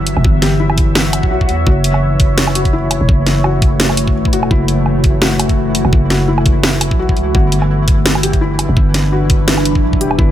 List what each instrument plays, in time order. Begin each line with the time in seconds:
Already playing: 808-style bass G1, ambient pad E3 B3 C#5 E5, synth texture F#3 F#5, felt piano E4 F#4 G4
0.07 closed hi-hat
0.17 808-style bass E1, low woodblock
0.25 808-style bass G1, kick
0.42 felt piano G4, snare, open hi-hat
0.60 felt piano E4
0.70 low woodblock
0.78 kick, open hi-hat
0.95 snare, closed hi-hat, swell
1.13 closed hi-hat, low woodblock
1.23 808-style bass B1, kick
1.31 felt piano F#4
1.41 kick
1.49 808-style bass E2, open hi-hat
1.66 808-style bass F#1, synth texture E3 E4, ambient pad A3, felt piano F#4, kick
1.84 open hi-hat
1.94 low woodblock
2.01 ambient pad F#4
2.20 kick, open hi-hat
2.38 snare, closed hi-hat
2.48 low woodblock
2.55 felt piano F#4, closed hi-hat
2.65 kick, open hi-hat
2.73 felt piano E4
2.91 closed hi-hat, low woodblock
3.01 808-style bass E1
3.09 808-style bass F#1, kick
3.27 snare, open hi-hat
3.44 felt piano F#4, low woodblock
3.62 kick, open hi-hat
3.80 snare, closed hi-hat
3.90 low woodblock
3.97 closed hi-hat
4.08 kick
4.16 808-style bass A1
4.25 kick
4.33 808-style bass E1, felt piano F#4, closed hi-hat
4.43 low woodblock
4.51 808-style bass F#1, felt piano E4, kick
4.68 open hi-hat
4.86 low woodblock
5.04 kick, open hi-hat
5.22 felt piano F#4, snare, closed hi-hat
5.40 closed hi-hat, low woodblock
5.49 kick, open hi-hat
5.75 closed hi-hat
5.85 808-style bass E1, low woodblock
5.93 808-style bass F#1, kick
6.10 felt piano F#4, snare, open hi-hat
6.28 felt piano E4
6.38 low woodblock
6.46 kick, open hi-hat
6.63 snare, closed hi-hat
6.81 closed hi-hat, low woodblock
6.91 808-style bass B1, kick
6.99 felt piano F#4
7.09 kick
7.17 808-style bass C#2, open hi-hat
7.35 808-style bass G1, ambient pad G3, felt piano F#4, kick
7.47 ambient pad D4
7.52 open hi-hat
7.62 low woodblock
7.75 ambient pad B4
7.88 kick, open hi-hat
8.06 snare, closed hi-hat
8.15 low woodblock
8.23 felt piano G4, closed hi-hat
8.33 kick, open hi-hat
8.41 felt piano E4
8.59 closed hi-hat, low woodblock
8.69 808-style bass E1
8.77 808-style bass G1, kick
8.94 snare, open hi-hat
9.12 felt piano F#4
9.30 kick, open hi-hat
9.48 snare, closed hi-hat
9.58 low woodblock
9.65 closed hi-hat
9.75 kick
9.83 808-style bass B1
9.93 kick
10.01 808-style bass E1, felt piano G4, closed hi-hat
10.11 low woodblock
10.18 808-style bass G1, felt piano E4, kick